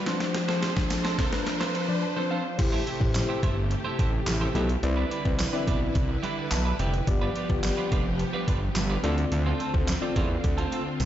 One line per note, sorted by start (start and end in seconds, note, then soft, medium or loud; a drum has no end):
0.00 riser medium
0.06 0.62 F3 medium
0.06 2.56 F3 medium
0.06 0.21 C4 medium
0.06 2.56 D4 medium
0.06 0.63 D4 medium
0.06 0.21 F4 medium
0.06 0.20 A4 loud
0.06 2.56 C5 medium
0.06 0.63 C5 loud
0.06 0.19 C5 medium
0.06 snare loud
0.06 closed hi-hat medium
0.20 muted clean electric guitar stroke soft
0.20 snare loud
0.20 closed hi-hat medium
0.34 muted clean electric guitar stroke soft
0.34 snare loud
0.34 closed hi-hat medium
0.48 0.61 C4 medium
0.48 0.62 F4 medium
0.48 0.62 A4 medium
0.48 0.63 C5 medium
0.48 snare loud
0.62 0.74 C4 medium
0.62 0.74 F4 medium
0.62 0.74 A4 medium
0.62 0.74 C5 medium
0.62 snare loud
0.62 closed hi-hat medium
0.76 1.04 F3 medium
0.76 1.05 D4 medium
0.76 1.05 C5 loud
0.76 kick medium
0.76 snare loud
0.90 muted clean electric guitar stroke soft
0.90 snare loud
0.90 closed hi-hat loud
0.90 tambourine loud
1.04 1.16 C4 medium
1.04 1.16 F4 medium
1.04 1.16 A4 medium
1.04 1.16 C5 medium
1.04 snare loud
1.18 1.33 C4 medium
1.18 1.32 F4 medium
1.18 1.32 A4 medium
1.18 1.31 C5 medium
1.18 kick loud
1.18 snare loud
1.18 closed hi-hat medium
1.32 1.61 F3 medium
1.32 1.61 D4 medium
1.32 1.61 B4 loud
1.32 muted clean electric guitar stroke soft
1.32 snare loud
1.46 muted clean electric guitar stroke soft
1.46 snare loud
1.46 closed hi-hat medium
1.60 1.73 C4 medium
1.60 1.74 F4 medium
1.60 1.74 A4 medium
1.60 1.75 C5 medium
1.60 snare loud
1.60 closed hi-hat medium
1.74 1.86 C4 medium
1.74 1.86 F4 medium
1.74 1.86 A4 medium
1.74 1.87 C5 medium
1.74 closed hi-hat medium
1.88 2.03 F3 medium
1.88 2.03 D4 medium
1.88 2.03 D5 loud
1.88 muted clean electric guitar stroke medium
2.02 2.29 A5 medium
2.02 muted clean electric guitar stroke soft
2.16 2.38 F3 medium
2.16 2.29 C4 medium
2.16 2.38 D4 medium
2.16 2.29 F4 medium
2.16 2.28 A4 medium
2.16 2.28 C5 medium
2.16 2.38 C5 medium
2.30 2.45 C4 medium
2.30 2.45 F4 medium
2.30 2.44 A4 medium
2.30 2.43 C5 medium
2.30 2.57 F5 medium
2.45 muted clean electric guitar stroke soft
2.58 2.81 A1 loud
2.58 4.81 C3 medium
2.58 2.80 A3 medium
2.58 4.81 A3 medium
2.58 2.80 E4 medium
2.58 2.80 G4 medium
2.58 4.81 G4 medium
2.58 2.80 C5 loud
2.58 muted clean electric guitar stroke medium
2.58 kick loud
2.58 closed hi-hat medium
2.58 crash loud
2.72 2.85 A3 medium
2.72 2.86 E4 medium
2.72 2.86 G4 medium
2.72 2.87 C5 medium
2.86 2.98 A3 medium
2.86 2.98 E4 medium
2.86 2.98 G4 medium
2.86 2.99 C5 medium
2.86 closed hi-hat medium
3.00 3.23 A1 loud
3.00 3.57 A3 medium
3.00 3.57 E4 medium
3.00 3.57 G4 medium
3.00 3.57 C5 loud
3.00 kick loud
3.15 muted clean electric guitar stroke soft
3.15 snare loud
3.15 clap loud
3.15 closed hi-hat loud
3.15 tambourine loud
3.29 3.41 A3 soft
3.29 3.41 E4 medium
3.29 3.40 G4 medium
3.29 3.40 C5 medium
3.42 3.75 G1 loud
3.42 3.57 A3 medium
3.42 3.57 E4 loud
3.42 3.56 G4 medium
3.42 3.56 C5 loud
3.42 kick loud
3.42 closed hi-hat medium
3.57 muted clean electric guitar stroke soft
3.71 muted clean electric guitar stroke soft
3.71 closed hi-hat medium
3.84 3.98 A3 medium
3.84 3.98 E4 medium
3.84 3.99 G4 medium
3.84 3.99 C5 medium
3.99 4.21 A1 loud
3.99 4.10 A3 medium
3.99 4.11 E4 medium
3.99 4.11 G4 medium
3.99 4.11 C5 medium
3.99 kick medium
3.99 closed hi-hat medium
4.13 muted clean electric guitar stroke medium
4.27 4.49 A1 loud
4.27 muted clean electric guitar stroke soft
4.27 snare medium
4.27 clap loud
4.27 closed hi-hat medium
4.27 tambourine medium
4.41 4.53 A3 medium
4.41 4.53 E4 medium
4.41 4.53 G4 medium
4.41 4.52 C5 medium
4.55 4.77 B1 loud
4.55 4.69 A3 medium
4.55 4.69 E4 medium
4.55 4.69 G4 medium
4.55 4.68 G4 medium
4.55 4.69 A4 medium
4.55 4.68 C5 loud
4.55 closed hi-hat medium
4.69 muted clean electric guitar stroke soft
4.69 closed hi-hat medium
4.83 5.05 C2 loud
4.83 7.05 D3 medium
4.83 5.04 C4 medium
4.83 7.05 E4 medium
4.83 5.04 E4 medium
4.83 7.05 B4 medium
4.83 5.04 B4 medium
4.83 5.04 D5 loud
4.83 muted clean electric guitar stroke soft
4.83 closed hi-hat medium
4.97 5.09 G3 medium
4.97 5.10 D4 medium
4.97 5.11 E4 medium
4.97 5.11 B4 medium
5.11 5.22 G3 medium
5.11 5.23 D4 medium
5.11 5.23 E4 medium
5.11 5.23 B4 medium
5.11 closed hi-hat medium
5.25 5.47 C2 loud
5.25 5.39 C4 medium
5.25 5.39 E4 medium
5.25 5.39 B4 medium
5.25 5.39 D5 loud
5.25 muted clean electric guitar stroke soft
5.25 kick loud
5.39 muted clean electric guitar stroke soft
5.39 snare loud
5.39 clap loud
5.39 closed hi-hat loud
5.39 tambourine loud
5.53 5.65 G3 medium
5.53 6.09 C4 medium
5.53 5.65 D4 medium
5.53 6.09 E4 medium
5.53 5.65 E4 medium
5.53 5.64 B4 medium
5.53 6.09 B4 medium
5.53 6.09 D5 loud
5.67 5.89 B1 medium
5.67 5.81 G3 medium
5.67 5.81 D4 medium
5.67 5.81 E4 medium
5.67 5.80 B4 medium
5.67 kick loud
5.67 closed hi-hat medium
5.81 muted clean electric guitar stroke soft
5.95 6.17 C2 medium
5.95 muted clean electric guitar stroke soft
5.95 kick loud
5.95 closed hi-hat medium
6.09 muted clean electric guitar stroke soft
6.23 6.37 G3 medium
6.23 6.37 D4 medium
6.23 6.36 E4 loud
6.23 6.36 B4 loud
6.23 closed hi-hat medium
6.37 6.49 G3 medium
6.37 6.49 D4 medium
6.37 6.49 E4 medium
6.37 6.48 B4 medium
6.51 6.73 B1 loud
6.51 6.77 A5 medium
6.51 snare medium
6.51 clap loud
6.51 closed hi-hat medium
6.51 tambourine medium
6.65 6.77 G3 medium
6.65 6.77 D4 medium
6.65 6.77 E4 medium
6.65 6.77 B4 medium
6.79 7.01 F1 loud
6.79 6.94 G3 medium
6.79 6.93 D4 medium
6.79 6.93 E4 medium
6.79 6.92 B4 medium
6.79 7.06 G5 medium
6.79 closed hi-hat medium
6.93 muted clean electric guitar stroke soft
6.93 closed hi-hat medium
7.07 7.29 G1 loud
7.07 9.02 F3 medium
7.07 9.02 B3 medium
7.07 7.28 B3 medium
7.07 7.28 F4 medium
7.07 9.02 G4 loud
7.07 7.29 G4 medium
7.07 7.29 D5 loud
7.07 muted clean electric guitar stroke soft
7.07 kick loud
7.07 closed hi-hat medium
7.21 7.34 G3 medium
7.21 7.35 D4 medium
7.21 7.35 F4 medium
7.21 7.36 B4 medium
7.35 7.47 G3 medium
7.35 7.47 D4 medium
7.35 7.47 F4 medium
7.35 7.48 B4 medium
7.35 closed hi-hat medium
7.49 7.71 G1 medium
7.49 8.05 B3 medium
7.49 8.05 F4 medium
7.49 8.06 G4 medium
7.49 8.06 D5 loud
7.49 muted clean electric guitar stroke medium
7.49 kick medium
7.63 muted clean electric guitar stroke soft
7.63 snare loud
7.63 clap loud
7.63 closed hi-hat loud
7.63 tambourine loud
7.77 7.90 G3 soft
7.77 7.89 D4 medium
7.77 7.89 F4 medium
7.77 7.89 B4 medium
7.91 8.24 F1 loud
7.91 8.06 G3 medium
7.91 8.06 D4 medium
7.91 8.05 F4 medium
7.91 8.04 B4 medium
7.91 kick loud
7.91 closed hi-hat medium
8.06 muted clean electric guitar stroke soft
8.19 muted clean electric guitar stroke soft
8.19 closed hi-hat medium
8.33 8.46 G3 medium
8.33 8.47 D4 medium
8.33 8.48 F4 medium
8.33 8.48 B4 medium
8.48 8.69 G1 medium
8.48 8.59 G3 medium
8.48 8.59 D4 medium
8.48 8.60 F4 medium
8.48 8.60 B4 medium
8.48 kick loud
8.48 closed hi-hat medium
8.62 muted clean electric guitar stroke soft
8.75 8.97 G1 loud
8.75 muted clean electric guitar stroke soft
8.75 snare loud
8.75 clap loud
8.75 closed hi-hat medium
8.75 tambourine medium
8.90 9.02 G3 medium
8.90 9.02 D4 medium
8.90 9.01 F4 medium
8.90 9.01 B4 medium
9.04 9.25 D2 loud
9.04 11.05 D3 medium
9.04 9.18 A3 loud
9.04 9.60 C4 medium
9.04 11.05 C4 medium
9.04 9.18 C4 loud
9.04 9.60 F4 medium
9.04 11.05 F4 medium
9.04 9.17 F4 loud
9.04 9.60 A4 medium
9.04 9.17 A4 loud
9.04 9.60 D5 loud
9.04 closed hi-hat medium
9.18 muted clean electric guitar stroke medium
9.18 closed hi-hat medium
9.32 9.53 D2 loud
9.32 muted clean electric guitar stroke soft
9.32 closed hi-hat medium
9.46 9.59 A3 medium
9.46 9.59 C4 medium
9.46 9.60 F4 medium
9.46 9.60 A4 medium
9.60 9.71 A3 medium
9.60 9.71 C4 medium
9.60 9.72 F4 medium
9.60 9.72 A4 medium
9.60 closed hi-hat medium
9.74 9.96 D2 loud
9.74 9.88 C4 medium
9.74 9.88 F4 medium
9.74 9.88 A4 medium
9.74 9.88 C5 medium
9.74 kick medium
9.88 muted clean electric guitar stroke soft
9.88 snare loud
9.88 clap loud
9.88 closed hi-hat loud
9.88 tambourine medium
10.01 10.14 A3 medium
10.01 10.58 C4 medium
10.01 10.14 C4 medium
10.01 10.58 F4 medium
10.01 10.13 F4 medium
10.01 10.58 A4 medium
10.01 10.13 A4 medium
10.01 10.58 D5 loud
10.16 10.38 E2 loud
10.16 10.30 A3 medium
10.16 10.30 C4 medium
10.16 10.29 F4 loud
10.16 10.29 A4 loud
10.16 kick loud
10.16 closed hi-hat medium
10.30 muted clean electric guitar stroke soft
10.44 10.66 D2 loud
10.44 muted clean electric guitar stroke soft
10.44 kick medium
10.44 closed hi-hat medium
10.58 10.71 A3 medium
10.58 10.71 C4 medium
10.58 10.72 F4 medium
10.58 10.72 A4 medium
10.58 closed hi-hat medium
10.72 10.83 A3 medium
10.72 10.83 C4 medium
10.72 10.84 F4 medium
10.72 10.84 A4 medium
10.72 closed hi-hat medium
10.86 muted clean electric guitar stroke soft
11.00 11.05 C2 loud
11.00 muted clean electric guitar stroke soft
11.00 closed hi-hat medium
11.00 high tom medium
11.00 tambourine medium